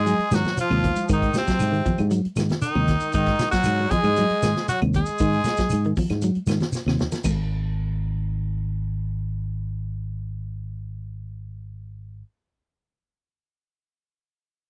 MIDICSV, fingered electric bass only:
0, 0, Header, 1, 3, 480
1, 0, Start_track
1, 0, Tempo, 512383
1, 1027, Time_signature, 4, 2, 24, 8
1, 13763, End_track
2, 0, Start_track
2, 0, Title_t, "Fingered electric bass"
2, 0, Program_c, 0, 33
2, 0, Note_on_c, 0, 44, 91
2, 122, Note_off_c, 0, 44, 0
2, 297, Note_on_c, 0, 44, 84
2, 391, Note_off_c, 0, 44, 0
2, 665, Note_on_c, 0, 39, 100
2, 847, Note_off_c, 0, 39, 0
2, 1025, Note_on_c, 0, 44, 99
2, 1207, Note_off_c, 0, 44, 0
2, 1509, Note_on_c, 0, 44, 80
2, 1689, Note_off_c, 0, 44, 0
2, 1875, Note_on_c, 0, 44, 98
2, 2054, Note_off_c, 0, 44, 0
2, 2225, Note_on_c, 0, 44, 88
2, 2317, Note_off_c, 0, 44, 0
2, 2580, Note_on_c, 0, 39, 97
2, 2765, Note_off_c, 0, 39, 0
2, 2945, Note_on_c, 0, 44, 104
2, 3128, Note_off_c, 0, 44, 0
2, 3428, Note_on_c, 0, 44, 95
2, 3610, Note_off_c, 0, 44, 0
2, 3778, Note_on_c, 0, 44, 87
2, 3964, Note_off_c, 0, 44, 0
2, 4158, Note_on_c, 0, 44, 82
2, 4246, Note_off_c, 0, 44, 0
2, 4516, Note_on_c, 0, 39, 95
2, 4695, Note_off_c, 0, 39, 0
2, 4875, Note_on_c, 0, 44, 104
2, 5055, Note_off_c, 0, 44, 0
2, 5366, Note_on_c, 0, 44, 88
2, 5541, Note_off_c, 0, 44, 0
2, 5719, Note_on_c, 0, 44, 94
2, 5897, Note_off_c, 0, 44, 0
2, 6064, Note_on_c, 0, 44, 78
2, 6158, Note_off_c, 0, 44, 0
2, 6430, Note_on_c, 0, 39, 92
2, 6611, Note_off_c, 0, 39, 0
2, 6799, Note_on_c, 0, 32, 88
2, 11444, Note_off_c, 0, 32, 0
2, 13763, End_track
3, 0, Start_track
3, 0, Title_t, "Muted fingered electric bass strokes"
3, 178, Note_on_c, 9, 29, 37
3, 271, Note_off_c, 9, 29, 0
3, 552, Note_on_c, 9, 29, 42
3, 646, Note_off_c, 9, 29, 0
3, 909, Note_on_c, 9, 29, 43
3, 1002, Note_off_c, 9, 29, 0
3, 2116, Note_on_c, 9, 29, 41
3, 2210, Note_off_c, 9, 29, 0
3, 2456, Note_on_c, 9, 29, 41
3, 2550, Note_off_c, 9, 29, 0
3, 2826, Note_on_c, 9, 29, 38
3, 2920, Note_off_c, 9, 29, 0
3, 4029, Note_on_c, 9, 29, 38
3, 4123, Note_off_c, 9, 29, 0
3, 4403, Note_on_c, 9, 29, 42
3, 4497, Note_off_c, 9, 29, 0
3, 4764, Note_on_c, 9, 29, 36
3, 4858, Note_off_c, 9, 29, 0
3, 5962, Note_on_c, 9, 29, 35
3, 6056, Note_off_c, 9, 29, 0
3, 6324, Note_on_c, 9, 29, 39
3, 6418, Note_off_c, 9, 29, 0
3, 6682, Note_on_c, 9, 29, 41
3, 6776, Note_off_c, 9, 29, 0
3, 13763, End_track
0, 0, End_of_file